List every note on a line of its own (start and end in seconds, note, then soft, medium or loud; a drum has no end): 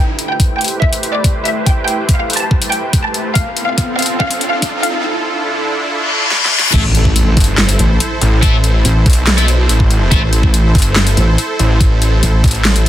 0.00 3.32 A3 medium
0.00 3.32 E4 medium
0.00 3.32 G4 medium
0.00 3.32 B4 medium
0.00 3.32 C5 medium
0.00 0.17 G5 medium
0.00 riser medium
0.19 closed hi-hat medium
0.29 0.49 G5 medium
0.40 kick medium
0.40 closed hi-hat medium
0.61 0.74 G5 medium
0.61 closed hi-hat soft
0.64 closed hi-hat medium
0.68 closed hi-hat medium
0.82 1.02 E5 medium
0.82 kick medium
0.93 closed hi-hat medium
1.03 closed hi-hat soft
1.14 1.33 D5 medium
1.24 kick medium
1.24 closed hi-hat medium
1.45 1.58 E5 medium
1.45 closed hi-hat medium
1.66 1.80 G5 medium
1.66 kick medium
1.66 closed hi-hat medium
1.88 2.07 G5 medium
1.88 closed hi-hat medium
2.09 kick medium
2.09 closed hi-hat medium
2.19 2.32 F5 medium
2.30 closed hi-hat soft
2.33 closed hi-hat medium
2.37 2.60 A5 medium
2.37 closed hi-hat medium
2.51 kick medium
2.62 closed hi-hat medium
2.72 2.92 G5 medium
2.72 closed hi-hat medium
2.93 kick loud
2.93 closed hi-hat medium
3.04 3.23 A5 medium
3.14 closed hi-hat medium
3.35 5.03 C4 medium
3.35 6.70 F4 medium
3.35 6.70 A4 medium
3.35 3.55 F5 medium
3.35 kick loud
3.35 closed hi-hat medium
3.57 closed hi-hat medium
3.67 3.87 F5 medium
3.78 kick loud
3.78 closed hi-hat medium
3.99 4.12 F5 medium
3.99 closed hi-hat soft
4.02 closed hi-hat medium
4.06 closed hi-hat medium
4.20 4.40 F5 medium
4.20 kick loud
4.31 closed hi-hat medium
4.41 closed hi-hat medium
4.52 4.71 F5 medium
4.62 kick loud
4.62 closed hi-hat medium
4.83 4.96 F5 medium
4.83 closed hi-hat soft
5.04 6.72 D3 medium
5.04 6.72 D4 medium
5.04 6.72 E4 medium
5.89 reverse cymbal medium
6.31 snare medium
6.45 snare medium
6.59 snare loud
6.73 7.35 A1 loud
6.73 6.81 A3 medium
6.73 12.89 E4 medium
6.73 6.81 E4 medium
6.73 12.89 A4 medium
6.73 6.81 A4 medium
6.73 12.89 C5 medium
6.73 kick loud
6.73 closed hi-hat medium
6.73 crash loud
6.73 impact medium
6.95 closed hi-hat medium
7.05 kick medium
7.16 closed hi-hat medium
7.37 7.78 G1 medium
7.37 kick loud
7.37 closed hi-hat medium
7.40 closed hi-hat medium
7.44 closed hi-hat medium
7.58 snare loud
7.58 clap loud
7.69 closed hi-hat medium
7.79 7.99 A1 loud
7.79 closed hi-hat medium
8.00 closed hi-hat medium
8.22 8.83 A1 loud
8.22 closed hi-hat medium
8.42 8.54 A3 medium
8.42 8.54 E4 medium
8.42 8.54 A4 medium
8.42 kick loud
8.42 closed hi-hat medium
8.64 closed hi-hat medium
8.85 9.04 A1 loud
8.85 closed hi-hat medium
9.06 9.68 B1 medium
9.06 kick loud
9.06 closed hi-hat soft
9.10 closed hi-hat medium
9.13 closed hi-hat medium
9.27 snare loud
9.27 clap loud
9.38 9.45 A3 medium
9.38 9.45 E4 medium
9.38 9.45 A4 loud
9.38 closed hi-hat medium
9.48 closed hi-hat medium
9.69 10.10 A1 loud
9.69 closed hi-hat medium
9.80 kick medium
9.91 closed hi-hat medium
10.11 10.73 A1 loud
10.11 10.19 A3 medium
10.11 10.19 E4 medium
10.11 10.19 A4 medium
10.11 kick loud
10.11 closed hi-hat medium
10.33 closed hi-hat medium
10.43 kick medium
10.54 closed hi-hat medium
10.75 11.16 G1 medium
10.75 kick loud
10.75 closed hi-hat soft
10.78 closed hi-hat medium
10.82 closed hi-hat medium
10.96 snare loud
10.96 clap loud
11.07 closed hi-hat medium
11.17 11.37 A1 loud
11.17 closed hi-hat medium
11.38 closed hi-hat medium
11.59 12.21 A1 loud
11.59 closed hi-hat medium
11.81 kick loud
11.81 closed hi-hat medium
12.02 closed hi-hat medium
12.23 12.42 A1 loud
12.23 closed hi-hat medium
12.44 12.74 A1 medium
12.44 kick loud
12.44 closed hi-hat soft
12.48 closed hi-hat medium
12.51 closed hi-hat medium
12.55 closed hi-hat soft
12.65 snare loud
12.65 clap medium
12.76 12.89 A1 medium
12.76 closed hi-hat medium